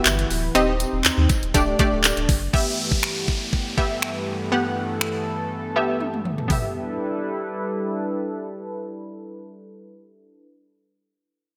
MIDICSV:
0, 0, Header, 1, 6, 480
1, 0, Start_track
1, 0, Key_signature, 1, "major"
1, 0, Tempo, 495868
1, 534, Time_signature, 4, 2, 24, 8
1, 11196, End_track
2, 0, Start_track
2, 0, Title_t, "Synth pluck"
2, 0, Program_c, 0, 84
2, 0, Note_on_c, 0, 59, 98
2, 0, Note_on_c, 0, 66, 88
2, 0, Note_on_c, 0, 67, 86
2, 0, Note_on_c, 0, 76, 107
2, 147, Note_off_c, 0, 59, 0
2, 148, Note_off_c, 0, 66, 0
2, 148, Note_off_c, 0, 67, 0
2, 150, Note_off_c, 0, 76, 0
2, 532, Note_on_c, 0, 60, 93
2, 533, Note_on_c, 0, 63, 85
2, 535, Note_on_c, 0, 67, 84
2, 537, Note_on_c, 0, 75, 103
2, 974, Note_off_c, 0, 60, 0
2, 974, Note_off_c, 0, 63, 0
2, 975, Note_off_c, 0, 67, 0
2, 976, Note_off_c, 0, 75, 0
2, 1493, Note_on_c, 0, 57, 99
2, 1495, Note_on_c, 0, 62, 92
2, 1496, Note_on_c, 0, 67, 87
2, 1498, Note_on_c, 0, 74, 112
2, 1688, Note_off_c, 0, 57, 0
2, 1689, Note_off_c, 0, 62, 0
2, 1690, Note_off_c, 0, 67, 0
2, 1691, Note_off_c, 0, 74, 0
2, 1735, Note_on_c, 0, 57, 100
2, 1737, Note_on_c, 0, 62, 88
2, 1738, Note_on_c, 0, 67, 88
2, 1741, Note_on_c, 0, 74, 109
2, 2069, Note_off_c, 0, 57, 0
2, 2069, Note_off_c, 0, 62, 0
2, 2070, Note_off_c, 0, 67, 0
2, 2071, Note_off_c, 0, 74, 0
2, 2452, Note_on_c, 0, 59, 81
2, 2455, Note_on_c, 0, 67, 78
2, 2457, Note_on_c, 0, 76, 93
2, 2894, Note_off_c, 0, 59, 0
2, 2895, Note_off_c, 0, 67, 0
2, 2896, Note_off_c, 0, 76, 0
2, 3654, Note_on_c, 0, 59, 89
2, 3656, Note_on_c, 0, 67, 76
2, 3659, Note_on_c, 0, 76, 98
2, 3988, Note_off_c, 0, 59, 0
2, 3989, Note_off_c, 0, 67, 0
2, 3990, Note_off_c, 0, 76, 0
2, 4374, Note_on_c, 0, 59, 84
2, 4376, Note_on_c, 0, 67, 75
2, 4378, Note_on_c, 0, 78, 90
2, 4814, Note_off_c, 0, 59, 0
2, 4816, Note_off_c, 0, 67, 0
2, 4817, Note_off_c, 0, 78, 0
2, 5574, Note_on_c, 0, 59, 87
2, 5577, Note_on_c, 0, 67, 78
2, 5578, Note_on_c, 0, 76, 94
2, 5908, Note_off_c, 0, 59, 0
2, 5910, Note_off_c, 0, 67, 0
2, 5910, Note_off_c, 0, 76, 0
2, 6274, Note_on_c, 0, 59, 82
2, 6294, Note_on_c, 0, 67, 74
2, 6314, Note_on_c, 0, 76, 84
2, 10104, Note_off_c, 0, 59, 0
2, 10124, Note_off_c, 0, 67, 0
2, 10144, Note_off_c, 0, 76, 0
2, 11196, End_track
3, 0, Start_track
3, 0, Title_t, "Analog synth pad"
3, 0, Program_c, 1, 89
3, 0, Note_on_c, 1, 52, 82
3, 0, Note_on_c, 1, 64, 74
3, 0, Note_on_c, 1, 71, 89
3, 0, Note_on_c, 1, 78, 75
3, 497, Note_off_c, 1, 64, 0
3, 497, Note_off_c, 1, 71, 0
3, 518, Note_off_c, 1, 52, 0
3, 518, Note_off_c, 1, 78, 0
3, 537, Note_on_c, 1, 60, 77
3, 537, Note_on_c, 1, 63, 67
3, 1486, Note_off_c, 1, 60, 0
3, 1486, Note_off_c, 1, 63, 0
3, 1495, Note_on_c, 1, 62, 72
3, 1496, Note_on_c, 1, 57, 80
3, 2442, Note_off_c, 1, 57, 0
3, 2445, Note_off_c, 1, 62, 0
3, 2453, Note_on_c, 1, 43, 77
3, 2453, Note_on_c, 1, 52, 68
3, 2454, Note_on_c, 1, 57, 73
3, 2454, Note_on_c, 1, 59, 71
3, 2455, Note_on_c, 1, 67, 90
3, 4355, Note_off_c, 1, 67, 0
3, 4375, Note_on_c, 1, 69, 86
3, 6255, Note_off_c, 1, 43, 0
3, 6255, Note_off_c, 1, 52, 0
3, 6256, Note_off_c, 1, 57, 0
3, 6256, Note_off_c, 1, 59, 0
3, 6276, Note_off_c, 1, 69, 0
3, 6295, Note_on_c, 1, 64, 72
3, 6296, Note_on_c, 1, 55, 75
3, 6296, Note_on_c, 1, 62, 68
3, 6296, Note_on_c, 1, 69, 68
3, 6296, Note_on_c, 1, 71, 82
3, 10125, Note_off_c, 1, 64, 0
3, 10126, Note_off_c, 1, 55, 0
3, 10126, Note_off_c, 1, 62, 0
3, 10126, Note_off_c, 1, 69, 0
3, 10126, Note_off_c, 1, 71, 0
3, 11196, End_track
4, 0, Start_track
4, 0, Title_t, "Sub bass"
4, 0, Program_c, 2, 38
4, 54, Note_on_c, 2, 31, 108
4, 242, Note_off_c, 2, 31, 0
4, 295, Note_on_c, 2, 26, 93
4, 483, Note_off_c, 2, 26, 0
4, 534, Note_on_c, 2, 27, 116
4, 822, Note_off_c, 2, 27, 0
4, 900, Note_on_c, 2, 27, 96
4, 989, Note_off_c, 2, 27, 0
4, 1014, Note_on_c, 2, 39, 48
4, 1065, Note_off_c, 2, 39, 0
4, 1138, Note_on_c, 2, 39, 102
4, 1228, Note_off_c, 2, 39, 0
4, 1379, Note_on_c, 2, 27, 89
4, 1468, Note_off_c, 2, 27, 0
4, 1496, Note_on_c, 2, 26, 116
4, 1683, Note_off_c, 2, 26, 0
4, 1738, Note_on_c, 2, 26, 50
4, 1788, Note_off_c, 2, 26, 0
4, 1861, Note_on_c, 2, 26, 91
4, 2049, Note_off_c, 2, 26, 0
4, 2101, Note_on_c, 2, 26, 86
4, 2189, Note_off_c, 2, 26, 0
4, 2215, Note_on_c, 2, 30, 97
4, 2403, Note_off_c, 2, 30, 0
4, 11196, End_track
5, 0, Start_track
5, 0, Title_t, "Downlifter"
5, 0, Program_c, 3, 103
5, 2456, Note_on_c, 3, 60, 86
5, 6295, Note_off_c, 3, 60, 0
5, 11196, End_track
6, 0, Start_track
6, 0, Title_t, "Drums"
6, 54, Note_on_c, 9, 39, 127
6, 54, Note_on_c, 9, 42, 101
6, 54, Note_on_c, 9, 54, 96
6, 151, Note_off_c, 9, 39, 0
6, 151, Note_off_c, 9, 42, 0
6, 151, Note_off_c, 9, 54, 0
6, 182, Note_on_c, 9, 42, 53
6, 279, Note_off_c, 9, 42, 0
6, 293, Note_on_c, 9, 54, 47
6, 296, Note_on_c, 9, 46, 84
6, 390, Note_off_c, 9, 54, 0
6, 393, Note_off_c, 9, 46, 0
6, 533, Note_on_c, 9, 42, 94
6, 536, Note_on_c, 9, 54, 37
6, 630, Note_off_c, 9, 42, 0
6, 633, Note_off_c, 9, 54, 0
6, 775, Note_on_c, 9, 42, 83
6, 775, Note_on_c, 9, 54, 53
6, 872, Note_off_c, 9, 42, 0
6, 872, Note_off_c, 9, 54, 0
6, 1013, Note_on_c, 9, 39, 112
6, 1014, Note_on_c, 9, 54, 85
6, 1015, Note_on_c, 9, 42, 92
6, 1110, Note_off_c, 9, 39, 0
6, 1110, Note_off_c, 9, 54, 0
6, 1112, Note_off_c, 9, 42, 0
6, 1253, Note_on_c, 9, 42, 73
6, 1255, Note_on_c, 9, 54, 48
6, 1256, Note_on_c, 9, 36, 101
6, 1349, Note_off_c, 9, 42, 0
6, 1352, Note_off_c, 9, 54, 0
6, 1353, Note_off_c, 9, 36, 0
6, 1383, Note_on_c, 9, 42, 46
6, 1480, Note_off_c, 9, 42, 0
6, 1495, Note_on_c, 9, 42, 104
6, 1495, Note_on_c, 9, 54, 54
6, 1496, Note_on_c, 9, 36, 94
6, 1591, Note_off_c, 9, 54, 0
6, 1592, Note_off_c, 9, 42, 0
6, 1593, Note_off_c, 9, 36, 0
6, 1734, Note_on_c, 9, 42, 73
6, 1734, Note_on_c, 9, 54, 29
6, 1737, Note_on_c, 9, 36, 98
6, 1831, Note_off_c, 9, 42, 0
6, 1831, Note_off_c, 9, 54, 0
6, 1833, Note_off_c, 9, 36, 0
6, 1974, Note_on_c, 9, 54, 95
6, 1975, Note_on_c, 9, 39, 122
6, 1975, Note_on_c, 9, 42, 100
6, 2071, Note_off_c, 9, 54, 0
6, 2072, Note_off_c, 9, 39, 0
6, 2072, Note_off_c, 9, 42, 0
6, 2102, Note_on_c, 9, 42, 54
6, 2199, Note_off_c, 9, 42, 0
6, 2213, Note_on_c, 9, 54, 50
6, 2215, Note_on_c, 9, 46, 85
6, 2216, Note_on_c, 9, 36, 108
6, 2310, Note_off_c, 9, 54, 0
6, 2312, Note_off_c, 9, 36, 0
6, 2312, Note_off_c, 9, 46, 0
6, 2456, Note_on_c, 9, 36, 107
6, 2552, Note_off_c, 9, 36, 0
6, 2823, Note_on_c, 9, 36, 92
6, 2919, Note_off_c, 9, 36, 0
6, 2933, Note_on_c, 9, 26, 106
6, 3030, Note_off_c, 9, 26, 0
6, 3176, Note_on_c, 9, 36, 85
6, 3273, Note_off_c, 9, 36, 0
6, 3417, Note_on_c, 9, 36, 86
6, 3513, Note_off_c, 9, 36, 0
6, 3657, Note_on_c, 9, 36, 86
6, 3754, Note_off_c, 9, 36, 0
6, 3895, Note_on_c, 9, 26, 106
6, 3992, Note_off_c, 9, 26, 0
6, 4851, Note_on_c, 9, 26, 100
6, 4948, Note_off_c, 9, 26, 0
6, 5813, Note_on_c, 9, 48, 54
6, 5910, Note_off_c, 9, 48, 0
6, 5940, Note_on_c, 9, 47, 56
6, 6037, Note_off_c, 9, 47, 0
6, 6053, Note_on_c, 9, 45, 79
6, 6150, Note_off_c, 9, 45, 0
6, 6178, Note_on_c, 9, 43, 82
6, 6275, Note_off_c, 9, 43, 0
6, 6292, Note_on_c, 9, 43, 91
6, 6292, Note_on_c, 9, 46, 78
6, 6293, Note_on_c, 9, 36, 96
6, 6389, Note_off_c, 9, 36, 0
6, 6389, Note_off_c, 9, 43, 0
6, 6389, Note_off_c, 9, 46, 0
6, 11196, End_track
0, 0, End_of_file